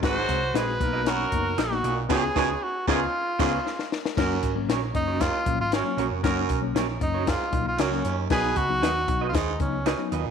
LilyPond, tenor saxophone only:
\new Staff \with { instrumentName = "Tenor saxophone" } { \time 4/4 \key fis \major \tempo 4 = 116 bis'4 b'4 ais'4 fis'8. r16 | gis'4 fis'8 eis'2 r8 | r4. dis'8 eis'8. eis'16 cis'8. r16 | r4. dis'8 eis'8. eis'16 cis'8. r16 |
gis'8 fis'4~ fis'16. eis'32 dis'8 cis'4 r8 | }